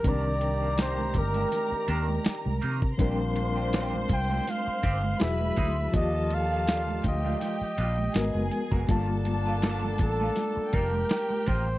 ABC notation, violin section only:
X:1
M:4/4
L:1/8
Q:"Swing 16ths" 1/4=81
K:Cdor
V:1 name="Violin section"
[Bb]8 | [cc']6 [=B=b]2 | [Aa]3 [Gg]3 [_A_a]2 | [Aa]4- [Aa] [Gg]3 |]